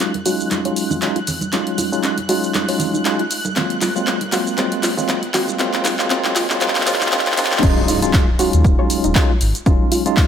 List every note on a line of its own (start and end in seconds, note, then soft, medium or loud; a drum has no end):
0.00 0.12 F#3 medium
0.00 0.12 G#3 medium
0.00 0.12 C#4 medium
0.00 0.05 C#4 medium
0.00 0.12 D#4 medium
0.00 0.12 F4 medium
0.00 7.64 F#6 medium
0.00 clap soft
0.00 closed hi-hat medium
0.00 riser medium
0.00 shaker soft
0.14 closed hi-hat medium
0.14 high conga medium
0.26 0.62 F#3 medium
0.26 0.62 G#3 medium
0.26 0.62 C#4 medium
0.26 0.62 D#4 medium
0.26 0.62 F4 loud
0.26 0.31 F#4 loud
0.26 open hi-hat loud
0.26 shaker medium
0.40 0.49 D#2 medium
0.40 shaker soft
0.51 0.73 A#1 medium
0.51 clap soft
0.51 closed hi-hat medium
0.51 high conga medium
0.51 shaker soft
0.65 0.99 F#3 medium
0.65 0.99 G#3 medium
0.65 0.99 C#4 medium
0.65 0.99 D#4 medium
0.65 0.99 F4 medium
0.65 0.69 C#5 medium
0.65 closed hi-hat medium
0.76 0.88 G#1 medium
0.76 open hi-hat loud
0.76 shaker medium
0.90 0.95 D#4 medium
0.90 high conga medium
0.90 low conga medium
0.90 shaker soft
1.02 1.18 F#3 medium
1.02 1.18 G#3 medium
1.02 1.18 C#4 medium
1.02 1.18 D#4 medium
1.02 1.18 F4 medium
1.02 clap medium
1.02 closed hi-hat medium
1.02 shaker soft
1.16 1.22 F4 medium
1.16 closed hi-hat medium
1.27 open hi-hat loud
1.27 low conga medium
1.27 shaker medium
1.41 closed hi-hat soft
1.41 high conga medium
1.41 shaker soft
1.53 1.64 D#1 loud
1.53 1.89 F#3 medium
1.53 1.89 G#3 medium
1.53 1.56 C#4 medium
1.53 1.89 C#4 medium
1.53 1.89 D#4 medium
1.53 1.89 F4 medium
1.53 clap medium
1.53 closed hi-hat medium
1.53 shaker soft
1.67 closed hi-hat medium
1.78 1.81 F4 medium
1.78 open hi-hat loud
1.78 high conga medium
1.78 shaker medium
1.92 2.15 F#3 medium
1.92 2.15 G#3 medium
1.92 2.15 C#4 medium
1.92 2.15 D#4 medium
1.92 2.15 F4 medium
1.92 shaker soft
2.03 2.09 C#4 medium
2.03 clap medium
2.03 closed hi-hat medium
2.03 shaker soft
2.18 closed hi-hat medium
2.18 high conga medium
2.29 2.65 F#3 medium
2.29 2.65 G#3 medium
2.29 2.65 C#4 medium
2.29 2.65 D#4 medium
2.29 2.65 F4 loud
2.29 2.34 F#4 loud
2.29 open hi-hat loud
2.29 shaker medium
2.43 2.53 D#2 medium
2.43 shaker soft
2.54 2.76 A#1 medium
2.54 clap medium
2.54 closed hi-hat medium
2.54 high conga medium
2.54 shaker soft
2.68 3.02 F#3 medium
2.68 3.02 G#3 medium
2.68 3.02 C#4 medium
2.68 3.02 D#4 medium
2.68 3.03 F4 medium
2.68 2.73 C#5 medium
2.68 open hi-hat medium
2.79 open hi-hat loud
2.79 low conga medium
2.79 shaker medium
2.93 2.98 D#4 medium
2.93 high conga medium
2.93 shaker soft
3.05 3.21 F#3 medium
3.05 3.21 G#3 medium
3.05 3.21 C#4 medium
3.05 3.21 D#4 medium
3.05 3.21 F4 medium
3.05 clap medium
3.05 closed hi-hat medium
3.05 shaker soft
3.19 3.26 F4 medium
3.19 closed hi-hat medium
3.31 open hi-hat loud
3.31 shaker medium
3.45 closed hi-hat soft
3.45 high conga medium
3.45 shaker soft
3.56 3.92 F#3 medium
3.56 3.92 G#3 medium
3.56 3.92 A#3 medium
3.56 3.59 C4 medium
3.56 3.92 C4 medium
3.56 3.92 F4 medium
3.56 clap medium
3.56 closed hi-hat medium
3.56 low conga medium
3.56 shaker soft
3.70 closed hi-hat medium
3.81 3.85 F4 medium
3.81 clap medium
3.81 open hi-hat loud
3.81 high conga loud
3.81 shaker medium
3.96 4.19 F#3 medium
3.96 4.19 G#3 medium
3.96 4.19 A#3 medium
3.96 4.19 C4 medium
3.96 4.19 F4 medium
3.96 shaker soft
4.07 4.12 C4 medium
4.07 clap medium
4.07 closed hi-hat medium
4.07 shaker soft
4.21 closed hi-hat medium
4.21 high conga medium
4.32 4.56 F#3 medium
4.32 4.56 G#3 medium
4.32 4.56 A#3 medium
4.32 4.56 C4 medium
4.32 4.56 F4 medium
4.32 4.37 F#4 medium
4.32 clap medium
4.32 open hi-hat loud
4.32 shaker medium
4.46 4.56 G#2 medium
4.46 shaker soft
4.57 4.79 D#2 medium
4.57 4.94 F#3 medium
4.57 4.94 G#3 medium
4.57 4.94 A#3 medium
4.57 4.61 C4 medium
4.57 4.94 C4 medium
4.57 4.94 F4 medium
4.57 clap medium
4.57 closed hi-hat medium
4.57 high conga medium
4.57 shaker soft
4.72 closed hi-hat medium
4.83 4.95 C2 medium
4.83 4.86 F4 medium
4.83 clap medium
4.83 open hi-hat loud
4.83 shaker medium
4.97 5.20 F#3 medium
4.97 5.20 G#3 medium
4.97 5.20 A#3 medium
4.97 5.20 C4 medium
4.97 5.20 F4 medium
4.97 high conga medium
4.97 low conga loud
4.97 shaker soft
5.09 5.14 C4 medium
5.09 clap medium
5.09 closed hi-hat medium
5.09 shaker soft
5.23 closed hi-hat soft
5.34 5.58 F#3 medium
5.34 5.58 G#3 medium
5.34 5.58 A#3 medium
5.34 5.58 C4 medium
5.34 5.58 F4 loud
5.34 5.39 F#4 loud
5.34 clap medium
5.34 open hi-hat loud
5.34 low conga medium
5.34 shaker medium
5.48 closed hi-hat soft
5.48 high conga medium
5.48 shaker soft
5.59 5.96 F#3 medium
5.59 5.96 G#3 medium
5.59 5.96 A#3 medium
5.59 5.63 C4 medium
5.59 5.96 C4 medium
5.59 5.96 F4 loud
5.59 clap medium
5.59 closed hi-hat medium
5.59 shaker soft
5.74 clap medium
5.74 closed hi-hat soft
5.85 5.88 F4 medium
5.85 clap loud
5.85 open hi-hat loud
5.85 high conga loud
5.85 shaker medium
5.99 6.08 F#3 medium
5.99 6.08 G#3 medium
5.99 6.08 A#3 medium
5.99 6.08 C4 medium
5.99 6.09 F4 loud
5.99 clap medium
5.99 shaker soft
6.10 6.46 F#3 medium
6.10 6.46 G#3 medium
6.10 6.46 A#3 medium
6.10 6.46 C4 medium
6.10 6.13 C4 medium
6.10 6.46 F4 medium
6.10 clap loud
6.10 closed hi-hat medium
6.10 shaker soft
6.24 clap medium
6.24 closed hi-hat medium
6.24 high conga medium
6.36 6.39 F4 medium
6.36 clap loud
6.36 open hi-hat loud
6.36 shaker medium
6.50 6.59 F#3 medium
6.50 6.59 G#3 medium
6.50 6.59 A#3 medium
6.50 6.59 C4 medium
6.50 6.59 F4 loud
6.50 clap medium
6.50 shaker soft
6.61 6.85 F#3 medium
6.61 6.85 G#3 medium
6.61 6.85 A#3 medium
6.61 6.64 C4 medium
6.61 6.85 C4 medium
6.61 6.85 F4 loud
6.61 clap loud
6.61 closed hi-hat medium
6.61 high conga medium
6.61 shaker soft
6.68 clap medium
6.75 clap medium
6.75 open hi-hat medium
6.81 clap medium
6.87 7.10 F#3 medium
6.87 7.10 G#3 medium
6.87 7.10 A#3 medium
6.87 6.90 C4 medium
6.87 7.10 C4 medium
6.87 7.10 F4 loud
6.87 clap loud
6.87 open hi-hat loud
6.87 low conga medium
6.87 shaker medium
6.94 clap medium
7.01 clap medium
7.01 high conga medium
7.01 shaker soft
7.06 clap medium
7.12 7.36 F#3 medium
7.12 7.36 G#3 medium
7.12 7.36 A#3 medium
7.12 7.15 C4 medium
7.12 7.36 C4 medium
7.12 7.36 F4 loud
7.12 clap loud
7.12 closed hi-hat medium
7.12 shaker soft
7.19 clap medium
7.26 clap medium
7.26 closed hi-hat soft
7.32 clap medium
7.37 7.61 F#3 medium
7.37 7.61 G#3 medium
7.37 7.61 A#3 medium
7.37 7.41 C4 medium
7.37 7.61 C4 medium
7.37 7.61 F4 loud
7.37 clap loud
7.37 open hi-hat loud
7.37 shaker medium
7.45 clap loud
7.52 clap medium
7.52 closed hi-hat soft
7.52 high conga medium
7.52 shaker soft
7.57 clap medium
7.63 7.75 D#1 loud
7.63 7.99 F#3 medium
7.63 7.99 G#3 medium
7.63 7.99 C#4 medium
7.63 7.66 C#4 medium
7.63 7.99 D#4 medium
7.63 7.99 F4 medium
7.63 kick loud
7.63 closed hi-hat medium
7.63 crash loud
7.63 impact medium
7.63 shaker soft
7.88 7.91 F4 medium
7.88 open hi-hat loud
7.88 shaker medium
8.02 8.25 F#3 medium
8.02 8.25 G#3 medium
8.02 8.25 C#4 medium
8.02 8.26 D#4 medium
8.02 8.26 F4 loud
8.02 closed hi-hat medium
8.02 shaker soft
8.13 8.19 C#4 medium
8.13 kick loud
8.13 clap loud
8.13 closed hi-hat medium
8.13 shaker soft
8.39 8.75 F#3 loud
8.39 8.75 G#3 medium
8.39 8.75 C#4 medium
8.39 8.75 D#4 medium
8.39 8.75 F4 loud
8.39 8.44 F#4 loud
8.39 open hi-hat loud
8.39 shaker medium
8.53 8.63 D#2 medium
8.53 closed hi-hat medium
8.53 shaker soft
8.64 8.76 D#1 loud
8.64 kick loud
8.64 closed hi-hat medium
8.64 shaker soft
8.79 9.13 F#3 medium
8.79 9.13 G#3 medium
8.79 9.13 C#4 medium
8.79 9.13 D#4 medium
8.79 9.13 F4 medium
8.79 8.83 C#5 medium
8.90 open hi-hat loud
8.90 shaker medium
9.04 9.14 D#1 loud
9.04 9.08 D#4 medium
9.04 closed hi-hat medium
9.04 shaker soft
9.15 9.31 F#3 medium
9.15 9.31 G#3 medium
9.15 9.31 C#4 medium
9.15 9.31 D#4 medium
9.15 9.31 F4 loud
9.15 kick loud
9.15 clap loud
9.15 closed hi-hat medium
9.15 shaker soft
9.30 9.36 F4 medium
9.41 9.53 G#1 medium
9.41 open hi-hat loud
9.41 shaker medium
9.55 closed hi-hat medium
9.55 shaker soft
9.66 9.78 D#1 loud
9.66 10.02 F#3 medium
9.66 10.02 G#3 medium
9.66 10.02 C#4 medium
9.66 9.69 C#4 medium
9.66 10.02 D#4 medium
9.66 10.02 F4 medium
9.66 kick loud
9.66 closed hi-hat medium
9.66 shaker soft
9.92 9.95 F4 medium
9.92 open hi-hat loud
9.92 shaker medium
10.06 10.27 F#3 medium
10.06 10.27 G#3 medium
10.06 10.27 C#4 medium
10.06 10.27 D#4 medium
10.06 10.27 F4 loud
10.06 closed hi-hat medium
10.06 shaker soft
10.17 10.22 C#4 medium
10.17 kick loud
10.17 clap loud
10.17 closed hi-hat medium
10.17 shaker soft